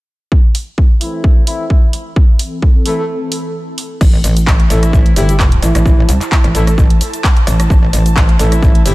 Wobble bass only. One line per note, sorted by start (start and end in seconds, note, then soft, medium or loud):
4.01 4.22 A1 loud
4.24 4.68 A1 medium
4.70 5.15 A1 medium
5.16 5.61 G1 medium
5.62 5.73 A1 loud
5.75 6.07 A1 loud
6.09 6.19 C2 medium
6.44 6.53 A1 medium
6.55 6.99 A1 medium
7.47 7.68 A1 loud
7.70 7.92 A1 loud
7.93 8.38 A1 medium
8.39 8.84 A1 medium
8.86 8.95 G1 medium